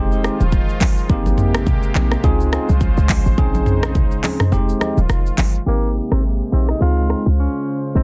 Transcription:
0.00 0.29 F1 loud
0.00 1.08 D#3 medium
0.00 0.22 G#3 loud
0.00 5.63 G#3 medium
0.00 0.22 C4 medium
0.00 0.22 D#4 medium
0.00 1.08 F4 medium
0.00 0.22 G4 loud
0.00 1.07 C5 medium
0.12 shaker medium
0.23 0.42 G#3 medium
0.23 0.42 C4 medium
0.23 0.42 D#4 medium
0.23 0.42 G4 medium
0.23 cross-stick medium
0.23 shaker medium
0.40 0.62 D#1 loud
0.40 high conga medium
0.40 shaker medium
0.52 kick loud
0.52 shaker medium
0.69 shaker medium
0.81 kick loud
0.81 clap loud
0.81 open hi-hat medium
0.81 high conga medium
0.98 shaker medium
1.09 1.91 G#1 loud
1.09 2.23 C3 medium
1.09 1.63 A#3 loud
1.09 2.23 A#3 medium
1.09 1.63 C4 medium
1.09 1.63 D#4 medium
1.09 2.23 G4 medium
1.09 1.63 G4 loud
1.09 kick loud
1.09 shaker medium
1.26 high conga medium
1.26 shaker medium
1.38 mid tom medium
1.38 shaker medium
1.55 cross-stick loud
1.55 shaker medium
1.66 kick loud
1.66 low conga medium
1.66 shaker medium
1.83 shaker medium
1.95 2.17 A#1 medium
1.95 2.13 A#3 medium
1.95 2.13 C4 medium
1.95 2.13 D#4 medium
1.95 2.13 G4 medium
1.95 clap loud
1.95 high conga medium
1.95 shaker medium
2.12 cross-stick medium
2.12 shaker soft
2.23 2.58 C#2 loud
2.23 3.37 C#3 medium
2.23 2.50 C4 medium
2.23 2.50 D#4 medium
2.23 3.37 F4 medium
2.23 2.51 F4 medium
2.23 2.51 G#4 loud
2.23 5.63 C5 medium
2.23 kick loud
2.23 low conga medium
2.23 shaker medium
2.40 shaker medium
2.52 2.70 C4 medium
2.52 2.70 D#4 medium
2.52 2.71 F4 medium
2.52 2.71 G#4 medium
2.52 cross-stick loud
2.52 shaker medium
2.69 2.90 C2 loud
2.69 high conga medium
2.69 shaker medium
2.81 kick loud
2.81 shaker medium
2.97 3.19 C#2 loud
2.97 shaker medium
3.09 kick loud
3.09 clap loud
3.09 open hi-hat medium
3.09 high conga medium
3.26 3.35 G#1 loud
3.26 shaker medium
3.38 4.20 A#1 loud
3.38 4.51 C#3 medium
3.38 3.91 C4 loud
3.38 3.91 C#4 medium
3.38 4.51 D#4 medium
3.38 3.91 D#4 medium
3.38 3.92 G#4 loud
3.38 kick loud
3.38 low conga medium
3.38 shaker medium
3.54 high conga medium
3.54 shaker medium
3.66 mid tom medium
3.66 shaker medium
3.83 cross-stick loud
3.83 shaker soft
3.95 kick medium
3.95 low conga medium
3.95 shaker medium
4.11 shaker medium
4.23 4.42 C4 medium
4.23 4.42 C#4 medium
4.23 4.42 D#4 medium
4.23 4.42 G#4 medium
4.23 clap loud
4.23 open hi-hat medium
4.23 high conga medium
4.23 shaker soft
4.40 cross-stick medium
4.40 mid tom loud
4.40 shaker soft
4.52 4.74 F1 loud
4.52 5.65 D#3 medium
4.52 4.79 G#3 loud
4.52 4.79 C4 medium
4.52 4.79 D#4 medium
4.52 5.65 F4 medium
4.52 4.79 G4 loud
4.52 low conga medium
4.52 shaker medium
4.69 shaker medium
4.80 4.99 G#3 medium
4.80 4.99 C4 medium
4.80 4.99 D#4 medium
4.80 4.99 G4 medium
4.80 cross-stick medium
4.80 high conga medium
4.80 shaker medium
4.97 5.06 D#1 medium
4.97 high conga medium
4.97 shaker medium
5.09 5.31 F1 loud
5.09 cross-stick medium
5.09 shaker medium
5.26 shaker medium
5.38 5.59 G1 loud
5.38 clap loud
5.38 open hi-hat medium
5.38 high conga medium
5.38 shaker medium
5.55 shaker medium
5.66 6.00 G#1 loud
5.66 6.80 C3 medium
5.66 7.93 G#3 medium
5.66 6.20 A#3 medium
5.66 6.80 A#3 medium
5.66 5.92 A#3 loud
5.66 6.20 C4 medium
5.66 6.20 D#4 medium
5.66 6.80 G4 medium
5.66 6.20 G4 loud
6.12 6.42 G#1 loud
6.12 6.23 C4 medium
6.12 cross-stick loud
6.52 6.74 A#1 medium
6.52 6.70 A#3 medium
6.52 6.70 C4 medium
6.52 6.67 C4 medium
6.52 6.70 D#4 medium
6.52 6.70 G4 medium
6.69 6.80 D#4 medium
6.69 cross-stick medium
6.81 7.15 C#2 loud
6.81 8.03 C#3 medium
6.81 7.07 G#3 medium
6.81 7.08 C4 medium
6.81 7.08 D#4 medium
6.81 7.94 F4 medium
6.81 7.08 F4 loud
6.81 7.24 F4 loud
6.81 8.03 C5 medium
7.09 7.27 G#3 medium
7.09 7.28 C4 medium
7.09 7.28 D#4 medium
7.09 7.28 F4 medium
7.09 cross-stick medium
7.26 7.48 C#2 medium
7.39 7.81 C#4 medium
7.95 8.03 A#1 loud
7.95 8.03 G#3 medium
7.95 8.03 C4 medium
7.95 8.03 C4 loud
7.95 8.03 C#4 medium
7.95 8.03 D#4 medium
7.95 8.03 D#4 loud

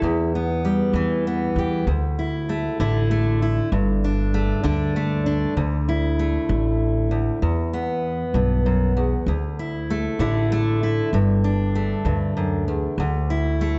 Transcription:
0.00 0.81 E2 medium
0.00 1.84 E2 medium
0.00 0.35 E4 medium
0.35 1.26 B3 medium
0.65 1.87 G3 soft
0.93 1.47 E2 medium
0.93 1.84 E3 medium
1.27 1.88 B3 medium
1.56 1.82 E2 medium
1.56 1.84 G4 soft
1.87 2.66 D2 medium
1.87 3.72 D2 medium
2.19 2.79 E4 soft
2.49 3.11 A3 medium
2.80 3.59 A1 medium
2.80 4.62 D3 medium
2.80 3.41 E4 medium
3.11 3.75 A3 medium
3.42 3.69 E4 soft
3.72 4.51 G1 medium
3.72 5.53 G2 medium
4.04 4.64 D4 medium
4.34 4.95 A3 medium
4.63 5.44 D2 medium
4.63 7.42 D3 medium
4.63 5.25 D4 medium
4.96 5.54 A3 medium
5.26 5.53 D4 medium
5.57 6.36 D2 medium
5.57 7.10 D2 medium
5.89 7.73 E4 medium
6.19 7.39 A3 soft
6.49 7.29 A1 medium
7.11 7.42 D2 medium
7.42 8.35 E2 medium
7.42 8.22 E2 medium
7.73 9.27 B3 medium
8.34 9.14 B1 medium
8.34 8.66 G2 medium
8.66 8.96 F#2 medium
8.97 9.27 E2 medium
9.26 10.06 D2 medium
9.26 11.13 D2 medium
9.59 10.19 E4 medium
9.90 10.52 A3 medium
10.19 10.99 A1 medium
10.19 12.98 D3 medium
10.19 10.82 E4 medium
10.52 11.17 A3 medium
10.83 11.10 E4 medium
11.13 11.92 G1 medium
11.13 12.04 G2 medium
11.44 12.95 D4 medium
11.75 12.95 A3 medium
12.05 12.85 D2 medium
12.05 12.36 G2 medium
12.37 12.67 F#2 medium
12.68 12.98 E2 medium
12.98 13.78 D2 medium
12.98 13.79 D2 medium
13.30 13.79 E4 medium
13.61 13.79 A3 soft

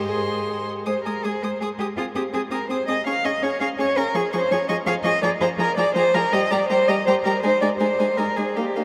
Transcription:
0.00 0.67 G#2 medium
0.00 0.67 D#5 soft
0.08 0.67 G#4 medium
0.08 0.66 C6 medium
0.86 0.94 G#3 medium
0.86 0.94 G#4 medium
0.86 1.04 C5 medium
0.86 0.94 D#6 medium
1.05 1.13 G#3 medium
1.05 1.13 G#4 soft
1.05 1.26 A#4 medium
1.05 1.14 D#6 soft
1.23 1.32 G#3 medium
1.23 1.31 G#4 soft
1.23 1.44 G#4 medium
1.23 1.32 D#6 soft
1.42 1.50 G#3 medium
1.42 1.50 G#4 soft
1.42 1.60 C5 medium
1.42 1.50 D#6 soft
1.60 1.68 G#3 medium
1.60 1.68 G#4 medium
1.60 1.68 G#4 soft
1.60 1.69 D#6 soft
1.78 1.86 G#3 medium
1.78 1.86 G4 medium
1.78 1.86 G#4 soft
1.78 1.87 D#6 soft
1.97 2.04 C4 medium
1.97 2.04 F4 medium
1.97 2.05 G#4 medium
1.97 2.05 D#6 medium
2.15 2.22 C4 medium
2.15 2.23 G4 medium
2.15 2.22 G#4 soft
2.15 2.23 D#6 soft
2.33 2.40 C4 medium
2.33 2.41 G#4 medium
2.33 2.41 D#6 medium
2.50 2.58 C4 medium
2.50 2.60 G#4 soft
2.50 2.70 A#4 medium
2.50 2.59 D#6 medium
2.69 2.76 C4 medium
2.69 2.77 G#4 medium
2.69 2.88 C5 medium
2.69 2.78 D#6 medium
2.88 2.95 C4 medium
2.88 2.96 G#4 medium
2.88 3.06 D#5 medium
2.88 2.95 D#6 soft
3.06 3.13 C#4 medium
3.06 3.13 G#4 medium
3.06 3.26 F5 medium
3.06 3.13 C#6 medium
3.24 3.31 C#4 medium
3.24 3.32 G#4 medium
3.24 3.44 D#5 medium
3.24 3.32 C#6 soft
3.42 3.49 C#4 medium
3.42 3.50 G#4 medium
3.42 3.60 C#5 medium
3.42 3.51 C#6 medium
3.60 3.68 C#4 medium
3.60 3.67 G#4 medium
3.60 3.68 F5 medium
3.60 3.68 C#6 medium
3.78 3.86 C#4 medium
3.78 3.85 G#4 medium
3.78 3.99 C#5 loud
3.78 3.87 C#6 medium
3.96 4.04 C#4 medium
3.96 4.04 G#4 medium
3.96 4.17 A#4 medium
3.96 4.04 C#6 medium
4.14 4.22 F3 medium
4.14 4.22 G#4 medium
4.14 4.33 G#4 medium
4.14 4.22 C#6 medium
4.33 4.40 F3 medium
4.33 4.40 G#4 medium
4.33 4.53 C5 medium
4.33 4.40 C#6 medium
4.51 4.58 F3 medium
4.51 4.59 G#4 medium
4.51 4.68 C#5 medium
4.51 4.58 C#6 medium
4.69 4.76 F3 medium
4.69 4.76 G#4 medium
4.69 4.76 D#5 medium
4.69 4.76 C#6 medium
4.86 4.93 F3 medium
4.86 4.95 G#4 medium
4.86 4.94 F5 loud
4.86 4.94 C#6 medium
5.04 5.11 F3 medium
5.04 5.13 G#4 medium
5.04 5.22 D#5 loud
5.04 5.12 C#6 medium
5.22 5.30 F3 medium
5.22 5.31 G#4 medium
5.22 5.30 D5 loud
5.22 5.30 A#5 medium
5.40 5.48 F3 medium
5.40 5.48 G#4 medium
5.40 5.48 C5 medium
5.40 5.49 A#5 medium
5.58 5.66 F3 medium
5.58 5.66 G#4 medium
5.58 5.77 A#4 loud
5.58 5.67 A#5 medium
5.77 5.84 F3 medium
5.77 5.86 G#4 medium
5.77 5.95 D5 medium
5.77 5.85 A#5 medium
5.95 6.02 F3 medium
5.95 6.05 G#4 medium
5.95 6.16 C5 loud
5.95 6.03 A#5 medium
6.14 6.22 F3 medium
6.14 6.22 G#4 medium
6.14 6.34 A#4 loud
6.14 6.22 A#5 medium
6.32 6.40 G3 medium
6.32 6.41 G4 medium
6.32 6.53 D#5 loud
6.32 6.41 A#5 medium
6.51 6.59 G3 medium
6.51 6.59 G4 medium
6.51 6.69 D5 medium
6.51 6.59 A#5 medium
6.70 6.77 G3 medium
6.70 6.77 G4 medium
6.70 6.89 C5 loud
6.70 6.78 A#5 medium
6.88 6.96 G3 medium
6.88 6.96 G4 medium
6.88 7.06 D#5 medium
6.88 6.96 A#5 medium
7.06 7.14 G3 medium
7.06 7.14 G4 medium
7.06 7.14 C5 loud
7.06 7.15 A#5 medium
7.25 7.32 G3 medium
7.25 7.32 G4 medium
7.25 7.43 A#4 medium
7.25 7.33 A#5 medium
7.43 7.50 G#3 medium
7.43 7.51 D#4 medium
7.43 7.61 C5 loud
7.43 7.51 G#5 medium
7.61 7.69 G#3 medium
7.61 7.69 D#4 medium
7.61 7.69 D5 medium
7.61 7.69 G#5 medium
7.80 7.87 G#3 medium
7.80 7.88 D#4 medium
7.80 8.19 C5 medium
7.80 7.88 G#5 medium
7.99 8.07 G#3 medium
7.99 8.07 D#4 medium
7.99 8.07 G#5 medium
8.17 8.25 G#3 medium
8.17 8.26 D#4 medium
8.17 8.38 A#4 medium
8.17 8.25 G#5 medium
8.37 8.45 G#3 medium
8.37 8.45 D#4 soft
8.37 8.57 G#4 medium
8.37 8.45 G#5 soft
8.56 8.64 A#3 medium
8.56 8.64 D#4 medium
8.56 8.84 G4 medium
8.56 8.64 F5 medium
8.76 8.84 A#3 medium
8.76 8.84 D#4 soft
8.76 8.84 F5 soft

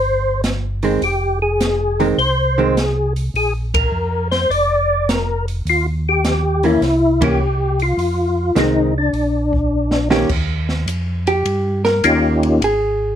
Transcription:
0.00 0.98 G1 medium
0.00 0.41 C5 medium
0.44 snare medium
0.44 closed hi-hat soft
0.83 1.00 D#3 medium
0.83 1.01 G#3 medium
0.83 1.01 C4 medium
0.83 open hi-hat soft
1.01 2.14 F1 medium
1.01 1.39 G4 medium
1.01 open hi-hat soft
1.42 2.01 G#4 medium
1.61 snare medium
1.61 closed hi-hat medium
1.99 2.17 D#3 medium
1.99 2.17 G#3 medium
1.99 2.17 C4 medium
1.99 2.08 A#4 medium
1.99 open hi-hat soft
2.17 3.30 C2 medium
2.17 2.78 C5 medium
2.17 open hi-hat soft
2.58 2.75 D#3 medium
2.58 2.75 G#3 medium
2.58 2.75 C4 medium
2.77 3.13 G#4 medium
2.77 snare medium
2.77 closed hi-hat soft
3.16 open hi-hat soft
3.34 3.88 A#1 medium
3.34 3.53 G#4 medium
3.34 open hi-hat soft
3.74 4.28 A#4 medium
3.74 kick medium
3.74 ride medium
3.92 4.46 F2 medium
4.31 4.51 C5 medium
4.31 snare soft
4.31 open hi-hat soft
4.49 5.62 F1 medium
4.49 5.10 D5 loud
4.49 open hi-hat soft
5.09 5.45 A#4 medium
5.09 snare medium
5.09 closed hi-hat soft
5.48 open hi-hat soft
5.65 6.78 D#2 medium
5.65 open hi-hat soft
5.70 5.86 F4 loud
6.09 6.67 G4 loud
6.25 snare medium
6.25 closed hi-hat soft
6.63 6.81 E3 medium
6.63 6.81 A#3 medium
6.63 6.81 C#4 medium
6.63 7.24 E4 medium
6.63 open hi-hat soft
6.81 7.94 C2 medium
6.81 snare soft
6.81 open hi-hat soft
7.21 7.38 E3 medium
7.21 7.39 A#3 medium
7.21 7.39 C#4 medium
7.21 7.83 G4 medium
7.21 kick medium
7.21 ride medium
7.80 8.60 F4 medium
7.80 open hi-hat soft
7.97 8.52 F2 medium
7.97 open hi-hat soft
8.56 9.10 C2 medium
8.56 8.91 D#3 medium
8.56 8.91 G#3 medium
8.56 8.92 C4 medium
8.56 snare medium
8.56 closed hi-hat soft
8.60 8.94 D#4 medium
8.98 10.09 D4 medium
9.13 10.25 A#1 medium
9.13 open hi-hat soft
9.53 kick medium
9.91 snare soft
10.10 10.28 D#3 medium
10.10 10.28 A#3 medium
10.10 10.28 C#4 medium
10.10 10.28 G4 medium
10.10 snare medium
10.29 10.86 D#2 medium
10.29 kick medium
10.29 crash medium
10.69 snare soft
10.86 11.43 F2 medium
10.86 hi-hat pedal medium
10.86 ride medium
11.27 11.81 G4 medium
11.27 ride soft
11.45 12.02 G2 medium
11.45 ride medium
11.85 12.58 A#4 loud
11.85 snare soft
12.04 12.60 D#2 medium
12.04 12.62 A#3 medium
12.04 12.62 C#4 medium
12.04 12.62 D#4 medium
12.04 12.62 F4 medium
12.04 12.62 G4 medium
12.04 hi-hat pedal soft
12.04 ride medium
12.43 ride soft
12.61 13.15 G#1 medium
12.61 13.15 G#4 medium
12.61 ride medium

